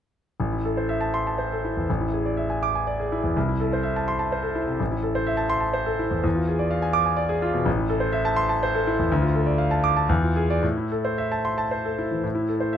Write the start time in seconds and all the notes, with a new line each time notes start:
0.40 A1
0.52 E4
0.65 A4
0.77 C5
0.89 E5
1.01 A5
1.14 C6
1.27 A5
1.38 C5
1.52 A4
1.64 E4
1.77 E2
1.90 A1
2.01 E4
2.13 G#4
2.26 D5
2.37 E5
2.50 G#5
2.63 D6
2.75 G#5
2.87 D5
3.00 G#4
3.12 E4
3.24 E2
3.36 C2
3.49 E4
3.60 A4
3.73 C5
3.83 E5
3.96 A5
4.08 C6
4.19 A5
4.32 C5
4.43 A4
4.55 E4
4.66 C3
4.80 A1
4.92 E4
5.03 A4
5.15 C5
5.27 E5
5.37 A5
5.50 C6
5.60 A5
5.74 C5
5.86 A4
5.99 E4
6.11 E2
6.24 E2
6.35 F4
6.48 G#4
6.59 D5
6.71 F5
6.82 G#5
6.93 D6
7.06 G#5
7.17 D5
7.29 G#4
7.42 F4
7.53 B2
7.65 A1
7.78 E4
7.90 A4
8.00 C5
8.12 E5
8.25 A5
8.36 C6
8.49 A5
8.63 C5
8.75 A4
8.87 E4
8.99 E2
9.12 D2
9.22 F4
9.35 A4
9.46 D5
9.58 F5
9.71 A5
9.84 D6
9.97 A5
10.09 E2
10.22 F4
10.36 G#4
10.50 D5
10.62 A2
10.77 E4
10.92 A4
11.05 C5
11.18 E5
11.32 A5
11.45 C6
11.58 A5
11.71 C5
11.85 A4
11.98 E4
12.11 E3
12.24 A2
12.35 E4
12.48 A4
12.60 C5
12.73 E5